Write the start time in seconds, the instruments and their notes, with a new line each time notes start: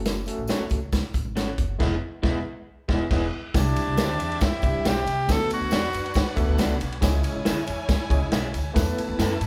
Already playing: upright bass F#1, tine electric piano A3 C#4 F#4 A4
0.05 snare, closed hi-hat, tambourine
0.26 tine electric piano A3 C#4 F#4 A4, closed hi-hat, tambourine
0.38 upright bass A1
0.47 clean electric guitar C#4 F#4 A4 C#5, snare, closed hi-hat, tambourine
0.60 muted upright bass stroke
0.69 upright bass C#2, kick, closed hi-hat, tambourine
0.92 kick, snare, closed hi-hat, tambourine
1.14 upright bass A1, kick, closed hi-hat, tambourine
1.25 upright bass G#1
1.36 clean electric guitar C#4 F#4 A4 C#5, snare, closed hi-hat, tambourine
1.58 upright bass F#1, kick, closed hi-hat, tambourine
1.79 upright bass E1, tine electric piano G#3 B3 E4 G#4, clean electric guitar E4 G#4 B4 E5, kick, snare, crash
2.22 upright bass E1, tine electric piano G#3 B3 E4, clean electric guitar E4 G#4 B4 E5, kick, snare
2.29 tine electric piano G#4
2.88 upright bass E1, tine electric piano G#3 B3 E4, clean electric guitar E4 G#4 B4 E5, kick, snare
2.95 tine electric piano G#4
3.10 upright bass E1, tine electric piano G#3 B3 E4, clean electric guitar E4 G#4 B4 E5, kick, snare, crash
3.16 tine electric piano G#4
3.54 upright bass C2, tine electric piano G3 C4 D4 E4 G4, string section C4 G4 E5, tenor saxophone D4, kick, snare, ride, tambourine
3.76 ride, tambourine
3.87 upright bass C2
3.97 upright bass D2, clean electric guitar D4 G4 C5 E5, snare, ride, tambourine
4.20 upright bass E2, ride, tambourine
4.32 ride
4.41 tenor saxophone E4, kick, snare, ride, tambourine
4.62 upright bass C2, tine electric piano G3 C4 D4 E4 G4, kick, ride, tambourine
4.85 upright bass B1, clean electric guitar D4 G4 C5 E5, tenor saxophone G4, snare, ride, tambourine
5.06 upright bass C2, ride, tambourine
5.27 upright bass D2, tine electric piano A3 B3 D4 E4 A4, string section D4 B4 F#5, kick, snare, ride, tambourine
5.32 tine electric piano F#4, tenor saxophone A4
5.50 tenor saxophone F#4, ride, tambourine
5.61 upright bass D2
5.71 upright bass E2, clean electric guitar D4 F#4 B4 D5, snare, ride, tambourine
5.84 snare
5.93 upright bass F#2, ride, tambourine
6.06 ride
6.14 kick, snare, ride, tambourine
6.36 upright bass D2, tine electric piano A3 B3 D4 F#4 A4, kick, ride, tambourine
6.49 upright bass D2
6.58 upright bass C#2, clean electric guitar D4 F#4 B4 D5, snare, ride, tambourine
6.80 upright bass B1, ride, tambourine
6.92 ride
7.01 upright bass C#2, tine electric piano G#3 C#4 E4 G#4 C#5, string section E4 C#5 G#5, kick, snare, ride, tambourine
7.23 ride, tambourine
7.35 upright bass C#2
7.45 upright bass D2, clean electric guitar E4 G#4 C#5 E5, snare, ride, tambourine
7.67 upright bass E2, ride, tambourine
7.89 kick, snare, ride, tambourine
8.09 upright bass C#2, tine electric piano G#3 C#4 E4 G#4 C#5, kick, ride, tambourine
8.22 upright bass C#2
8.32 upright bass B1, clean electric guitar E4 G#4 C#5 E5, snare, ride, tambourine
8.54 upright bass D2, ride, tambourine
8.73 upright bass E2, tine electric piano A3 B3 E4 A4 B4, string section E4 B4 A5, kick, snare, ride, tambourine
8.98 ride, tambourine
9.08 upright bass E2
9.19 upright bass F#2, clean electric guitar E4 A4 B4 E5, snare, ride, tambourine
9.31 snare
9.41 upright bass G#2, ride, tambourine